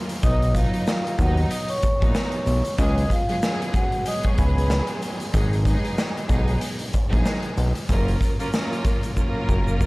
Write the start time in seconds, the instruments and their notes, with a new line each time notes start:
Already playing: string section F#3 A#3 C#4 F4 A#4
0.09 closed hi-hat
0.22 analog synth bass B1, string section F#3 B3 D#4, vibraphone D#5 D#6, kick, closed hi-hat, shaker
0.42 closed hi-hat
0.54 string section F#3 B3 D#4, vibraphone F4 F5, kick, closed hi-hat, shaker
0.74 closed hi-hat
0.87 snare, shaker
1.07 closed hi-hat
1.18 analog synth bass D#2, string section F#3 B3 D#4, vibraphone F#4 F#5, kick, closed hi-hat, shaker
1.37 closed hi-hat
1.51 vibraphone D#5 D#6, closed hi-hat, shaker
1.68 vibraphone C#5 C#6, closed hi-hat
1.78 vibraphone C#5 C#6
1.82 kick, closed hi-hat, shaker
1.99 analog synth bass A#1, string section F#3 B3 D#4, kick, closed hi-hat
2.15 snare, shaker
2.32 closed hi-hat
2.46 analog synth bass B1, closed hi-hat, shaker
2.65 closed hi-hat, shaker
2.78 analog synth bass C#2, string section F#3 G#3 B3 C#4 G#4, vibraphone D#5 D#6, kick, closed hi-hat, shaker
2.98 closed hi-hat
3.10 vibraphone F4 F5, kick, closed hi-hat, shaker
3.27 string section F#3 G#3 B3 C#4 G#4, closed hi-hat
3.42 string section F#3 G#3 B3 C#4 G#4, snare, shaker
3.62 closed hi-hat
3.74 vibraphone F#4 F#5, kick, closed hi-hat, shaker
3.92 closed hi-hat
4.05 string section F#3 G#3 B3 C#4 G#4, vibraphone D#5 D#6, closed hi-hat, shaker
4.23 vibraphone C#5 C#6, kick, closed hi-hat
4.38 analog synth bass C#2, vibraphone B4 B5, kick, closed hi-hat, shaker
4.58 closed hi-hat
4.70 snare, shaker
4.87 closed hi-hat
5.02 closed hi-hat, shaker
5.20 closed hi-hat, shaker
5.32 analog synth bass G#1, string section F#3 G#3 B3 D#4 G#4, kick, closed hi-hat, shaker
5.53 closed hi-hat
5.65 string section F#3 G#3 B3 D#4 G#4, kick, closed hi-hat, shaker
5.84 closed hi-hat
5.98 snare, shaker
6.17 closed hi-hat
6.27 analog synth bass B1, string section F#3 G#3 B3 D#4 G#4, kick, closed hi-hat, shaker
6.48 closed hi-hat
6.61 closed hi-hat, shaker
6.79 closed hi-hat
6.93 kick, closed hi-hat, shaker
7.09 analog synth bass A#1, string section F#3 G#3 B3 D#4 G#4, kick
7.14 closed hi-hat
7.25 snare, shaker
7.42 closed hi-hat
7.57 analog synth bass B1, closed hi-hat, shaker
7.75 closed hi-hat, shaker
7.89 analog synth bass F#1, string section F#3 A#3 C#4 F4 A#4, kick, closed hi-hat, shaker
8.08 closed hi-hat
8.21 kick, closed hi-hat, shaker
8.38 string section F#3 A#3 C#4 F4 A#4, closed hi-hat, shaker
8.53 string section F#3 A#3 C#4 F4 A#4, snare, shaker
8.73 closed hi-hat
8.84 kick, closed hi-hat, shaker
9.03 closed hi-hat, shaker
9.16 string section F#3 A#3 C#4 F4 A#4, kick, shaker
9.49 analog synth bass F#1, kick, shaker
9.68 shaker
9.81 kick, shaker